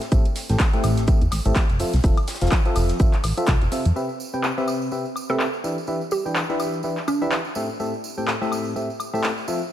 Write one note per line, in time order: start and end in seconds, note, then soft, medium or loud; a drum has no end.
0.01 snare soft
0.01 closed hi-hat medium
0.01 tambourine soft
0.01 shaker soft
0.12 0.21 A1 loud
0.12 0.25 A2 medium
0.12 0.25 C4 medium
0.12 0.25 G4 medium
0.12 0.25 A4 medium
0.12 0.25 E5 medium
0.12 kick loud
0.12 closed hi-hat medium
0.12 tambourine medium
0.12 shaker medium
0.12 shaker soft
0.25 closed hi-hat soft
0.25 tambourine soft
0.35 snare medium
0.35 open hi-hat loud
0.35 tambourine medium
0.35 shaker medium
0.49 0.56 A1 medium
0.49 0.67 A2 medium
0.49 0.67 C4 medium
0.49 0.67 G4 medium
0.49 0.67 A4 medium
0.49 0.67 G5 medium
0.49 snare soft
0.49 closed hi-hat medium
0.49 tambourine soft
0.49 shaker soft
0.59 kick loud
0.59 snare loud
0.59 clap loud
0.59 closed hi-hat medium
0.59 tambourine soft
0.59 shaker medium
0.59 shaker soft
0.73 1.05 A2 loud
0.73 1.05 C4 medium
0.73 1.05 G4 medium
0.73 1.05 A4 medium
0.73 1.05 E5 loud
0.73 closed hi-hat soft
0.73 tambourine soft
0.84 1.14 A1 loud
0.84 open hi-hat loud
0.84 tambourine medium
0.84 high woodblock medium
0.84 shaker medium
0.97 snare medium
0.97 closed hi-hat medium
0.97 tambourine soft
0.97 shaker soft
1.07 1.21 A2 medium
1.07 1.21 C4 medium
1.07 1.21 G4 medium
1.07 1.21 A4 medium
1.07 1.21 E5 medium
1.07 kick loud
1.07 closed hi-hat medium
1.07 tambourine medium
1.07 shaker medium
1.07 shaker soft
1.21 1.28 E2 medium
1.21 closed hi-hat soft
1.21 tambourine soft
1.31 1.41 A1 medium
1.31 snare medium
1.31 open hi-hat loud
1.31 tambourine loud
1.31 high woodblock medium
1.31 shaker medium
1.45 1.52 A1 medium
1.45 1.63 A2 loud
1.45 1.63 C4 medium
1.45 1.63 G4 medium
1.45 1.63 A4 medium
1.45 1.63 E5 loud
1.45 closed hi-hat medium
1.45 tambourine soft
1.45 shaker soft
1.55 kick loud
1.55 snare loud
1.55 clap loud
1.55 closed hi-hat medium
1.55 tambourine soft
1.55 shaker medium
1.55 shaker soft
1.70 1.84 F1 medium
1.70 closed hi-hat soft
1.70 tambourine soft
1.79 1.93 F3 medium
1.79 1.93 C4 medium
1.79 1.93 F4 medium
1.79 1.93 A4 medium
1.79 1.93 E5 medium
1.79 open hi-hat medium
1.79 open hi-hat loud
1.79 tambourine medium
1.79 shaker medium
1.93 2.00 C2 medium
1.93 snare medium
1.93 closed hi-hat medium
1.93 tambourine soft
1.93 shaker soft
2.04 2.17 F3 medium
2.04 2.17 C4 medium
2.04 2.17 F4 medium
2.04 2.17 A4 medium
2.04 2.17 E5 medium
2.04 kick loud
2.04 closed hi-hat medium
2.04 tambourine medium
2.04 shaker medium
2.04 shaker soft
2.17 closed hi-hat soft
2.17 tambourine soft
2.17 high woodblock medium
2.27 snare medium
2.27 open hi-hat loud
2.27 tambourine medium
2.27 shaker medium
2.34 snare medium
2.34 shaker medium
2.41 2.48 F1 medium
2.41 2.59 F3 medium
2.41 2.59 C4 medium
2.41 2.59 F4 medium
2.41 2.59 A4 medium
2.41 2.59 F5 medium
2.41 snare medium
2.41 closed hi-hat medium
2.41 tambourine soft
2.41 shaker medium
2.41 shaker soft
2.46 snare medium
2.46 shaker medium
2.52 kick loud
2.52 snare loud
2.52 clap loud
2.52 closed hi-hat medium
2.52 tambourine medium
2.52 shaker medium
2.52 shaker soft
2.65 2.97 F3 loud
2.65 2.97 C4 medium
2.65 2.97 F4 medium
2.65 2.97 A4 medium
2.65 2.97 E5 loud
2.65 closed hi-hat soft
2.65 tambourine soft
2.75 2.92 F1 loud
2.75 open hi-hat loud
2.75 tambourine medium
2.75 high woodblock medium
2.75 shaker medium
2.89 snare soft
2.89 closed hi-hat medium
2.89 tambourine soft
2.89 shaker soft
2.99 3.09 A1 medium
2.99 3.13 F3 medium
2.99 3.13 C4 medium
2.99 3.13 F4 medium
2.99 3.13 A4 medium
2.99 3.13 E5 medium
2.99 kick loud
2.99 closed hi-hat medium
2.99 tambourine medium
2.99 shaker medium
2.99 shaker soft
3.13 clap soft
3.13 closed hi-hat soft
3.13 tambourine soft
3.24 3.33 A1 loud
3.24 open hi-hat loud
3.24 tambourine medium
3.24 high woodblock medium
3.24 shaker medium
3.37 3.55 F3 loud
3.37 3.55 C4 medium
3.37 3.55 F4 medium
3.37 3.55 A4 medium
3.37 3.55 E5 loud
3.37 closed hi-hat medium
3.37 tambourine soft
3.37 shaker soft
3.46 3.57 C2 loud
3.46 kick loud
3.46 snare loud
3.46 clap loud
3.46 closed hi-hat medium
3.46 tambourine medium
3.46 shaker medium
3.48 shaker soft
3.62 3.68 F1 loud
3.62 closed hi-hat soft
3.62 tambourine soft
3.72 3.85 C3 medium
3.72 3.85 C4 medium
3.72 3.85 F4 medium
3.72 3.85 A4 medium
3.72 3.85 E5 medium
3.72 open hi-hat loud
3.72 tambourine medium
3.72 shaker medium
3.85 3.92 F2 medium
3.85 closed hi-hat medium
3.85 tambourine soft
3.85 shaker soft
3.96 4.09 C3 medium
3.96 4.09 C4 medium
3.96 4.09 G4 medium
3.96 4.09 B4 medium
3.96 4.09 E5 medium
3.96 tambourine soft
4.09 tambourine soft
4.20 tambourine medium
4.34 4.51 C3 medium
4.34 4.51 C4 medium
4.34 4.51 G4 medium
4.34 4.51 B4 medium
4.34 4.51 G5 medium
4.34 tambourine soft
4.43 clap loud
4.43 tambourine medium
4.58 4.89 C3 medium
4.58 4.89 C4 medium
4.58 4.89 G4 medium
4.58 4.89 B4 medium
4.58 4.89 E5 loud
4.58 tambourine soft
4.68 tambourine medium
4.68 high woodblock medium
4.82 tambourine soft
4.91 5.05 C3 medium
4.91 5.05 C4 medium
4.91 5.05 G4 medium
4.91 5.05 B4 medium
4.91 5.05 E5 medium
4.91 tambourine soft
5.05 tambourine soft
5.16 tambourine medium
5.16 high woodblock medium
5.30 5.47 C3 loud
5.30 5.47 C4 medium
5.30 5.47 G4 medium
5.30 5.41 A4 medium
5.30 5.47 B4 medium
5.30 5.47 E5 loud
5.40 clap loud
5.40 tambourine soft
5.53 tambourine soft
5.64 5.77 E3 medium
5.64 5.77 D4 medium
5.64 5.77 G4 medium
5.64 5.77 B4 medium
5.64 5.77 E5 medium
5.64 tambourine medium
5.78 tambourine soft
5.87 6.01 E3 medium
5.87 6.01 D4 medium
5.87 6.01 G4 medium
5.87 6.01 B4 medium
5.87 6.01 E5 medium
5.87 tambourine soft
6.01 tambourine soft
6.11 6.26 G4 medium
6.11 tambourine medium
6.26 6.43 E3 medium
6.26 6.43 D4 medium
6.26 6.43 G4 medium
6.26 6.43 B4 medium
6.26 6.43 G5 medium
6.26 tambourine soft
6.36 clap loud
6.36 tambourine medium
6.50 6.81 E3 medium
6.50 6.81 D4 medium
6.50 6.81 G4 medium
6.50 6.81 B4 medium
6.50 6.81 E5 loud
6.50 tambourine soft
6.60 tambourine medium
6.60 high woodblock medium
6.74 tambourine soft
6.83 6.97 E3 medium
6.83 6.97 D4 medium
6.83 6.97 G4 medium
6.83 6.97 B4 medium
6.83 6.97 E5 medium
6.83 tambourine soft
6.97 clap soft
6.97 tambourine soft
7.08 7.56 D4 medium
7.08 tambourine medium
7.08 high woodblock medium
7.22 7.39 E3 medium
7.22 7.39 D4 medium
7.22 7.39 G4 medium
7.22 7.39 B4 medium
7.22 7.39 E5 loud
7.22 tambourine soft
7.31 clap loud
7.31 tambourine soft
7.45 tambourine soft
7.55 7.69 A2 medium
7.55 7.69 C4 medium
7.55 7.69 G4 medium
7.55 7.69 A4 medium
7.55 7.69 E5 medium
7.55 tambourine loud
7.70 tambourine soft
7.80 7.93 A2 medium
7.80 7.93 C4 medium
7.80 7.93 G4 medium
7.80 7.93 A4 medium
7.80 7.93 E5 medium
7.80 tambourine medium
7.94 tambourine soft
8.04 tambourine medium
8.18 8.35 A2 medium
8.18 8.35 C4 medium
8.18 8.35 G4 medium
8.18 8.35 A4 medium
8.18 8.35 G5 medium
8.18 tambourine soft
8.28 clap loud
8.28 tambourine medium
8.42 8.73 A2 medium
8.42 8.73 C4 medium
8.42 8.73 G4 medium
8.42 8.73 A4 medium
8.42 8.73 E5 loud
8.42 tambourine soft
8.52 tambourine medium
8.52 high woodblock medium
8.65 tambourine soft
8.76 8.89 A2 medium
8.76 8.89 C4 medium
8.76 8.89 G4 medium
8.76 8.89 A4 medium
8.76 8.89 E5 medium
8.76 tambourine soft
8.90 tambourine soft
9.00 tambourine medium
9.00 high woodblock medium
9.14 9.31 A2 loud
9.14 9.31 C4 medium
9.14 9.31 G4 medium
9.14 9.31 A4 medium
9.14 9.31 E5 loud
9.14 tambourine soft
9.24 clap loud
9.24 tambourine medium
9.38 tambourine soft
9.48 9.61 F3 medium
9.48 9.61 C4 medium
9.48 9.61 F4 medium
9.48 9.61 A4 medium
9.48 9.61 E5 medium
9.48 tambourine loud
9.62 tambourine soft